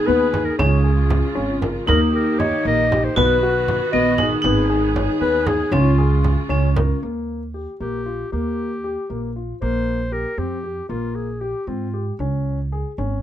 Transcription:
Already playing: D#3 B3 D#4 G#4
0.06 D#2 B3 B4
0.33 G#4, frame drum
0.44 A#4
0.58 C#2 C#3 G#3 C#4 F4 G#4, frame drum
0.84 G#4, frame drum
1.10 frame drum
1.35 G#1 C#4
1.61 A#4, frame drum
1.87 D#2 D#3 A#3 D#4 G4 A#4, frame drum
2.13 G4 A#4, frame drum
2.39 C#5 D#5, frame drum
2.65 A#1 A#3 D#5
2.91 G4, frame drum
3.04 C5
3.16 B1 D#3 B3 F#4 B4, frame drum
3.43 F#4, frame drum
3.68 frame drum
3.92 A#1 B3 D#5
4.18 D#4 G#4, frame drum
4.42 G#1 B3 D#4 G#4, frame drum
4.70 G#4
4.96 C#5, frame drum
5.21 D#2 B3 B4
5.46 G#4, frame drum
5.72 C#2 C#3 G#3 C#4 F4, frame drum
5.98 G#4, frame drum
6.24 frame drum
6.49 C#2 C#4
6.76 A#4, frame drum
7.03 D#2 A#3
7.54 G4
7.80 A#1 A#3 G4
8.06 F4
8.32 D#2 A#3 G4
8.84 G4
9.10 A#1 A#3
9.36 F4
9.61 A#1 A#3 C5
10.12 G4 A#4
10.38 F2 C4 G4
10.63 G4
10.89 A#1 A#3 F4
11.15 G#4
11.41 G4
11.67 G#2 C4 F4
11.94 G4
12.19 C#2 C#4
12.72 G#4
12.98 G#1 C#4

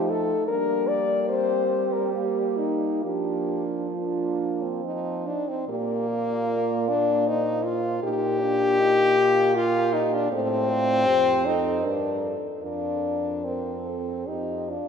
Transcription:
Already playing: F3 A3 D#4 G4
0.10 A4
0.48 G3 A#3 D4 A#4
0.88 D5
1.29 C4 C5
1.93 A#4
2.13 A#3 G4
2.57 D#4
3.03 F3 A#3 D4 G4
3.96 A#3 D4 F4
4.62 C4
4.84 F3 D#4
5.27 D4 D#4
5.49 C4
5.69 A#2 A#3 G4 D5
6.08 F4
6.49 D5
6.89 D4
7.28 D#4 C5
7.65 F4
8.02 A#2 D#4 G4 A#4
8.41 D4 D5
8.78 D#4 D#5
9.18 F4
9.56 F4 G4 A#4
9.94 D#4
10.14 D4
10.31 A2 C4 A4 C5
10.69 F4 D5
11.06 F2 G4 C5
11.45 D#4 A4
11.82 G2 D4 A#4
12.21 A4
12.63 F2 D4 F4 A#4
13.45 C4 A#4
13.86 A4
14.27 F2 D#4 G4 C5
14.70 D4 F4

